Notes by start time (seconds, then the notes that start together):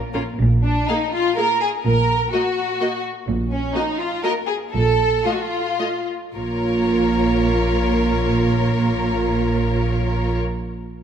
0.14 A#1 A#3 C#4 F4 A#4
0.39 A#1 A#2
0.64 D4
0.88 A#3 D#4 G#4 F5
1.13 F4
1.37 A#3 G#4 A#4 F5
1.61 G#4
1.85 A#1 A#2 A#4
2.33 A#3 F#4 D#5
2.80 A#3 F#4 D#5
3.27 A#1 A#2
3.51 C#4
3.74 A#3 D#4 F#4 D#5
3.99 F4
4.23 A#3 F#4 A#4 D#5
4.47 G#4
4.72 A#1 A#2 A4
5.25 A3 F4 D#5
5.32 F#4
5.41 F4
5.79 A3 F4 D#5
6.35 A#1 A#2 A#3 F4 A#4 C#5